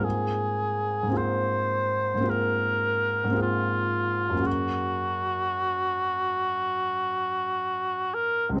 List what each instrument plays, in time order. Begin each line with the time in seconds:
Already playing: grand piano G#2 A#3 C4 F4
0.00 grand piano G#4, cor anglais G#4
1.03 grand piano G#2 A#3
1.09 grand piano C4 F4
1.16 grand piano G#4, cor anglais C5
2.14 grand piano G#2 A#3
2.20 grand piano C4 F4
2.27 grand piano G#4, cor anglais A#4
3.24 grand piano G#2 A#3
3.31 grand piano C4 F4
3.37 grand piano G#4
3.42 cor anglais F4
4.30 grand piano F#2 A#3
4.36 grand piano C#4 F#4
4.43 cor anglais F#4, grand piano G#4
8.14 cor anglais A#4
8.49 grand piano C#2 G#3
8.56 grand piano C4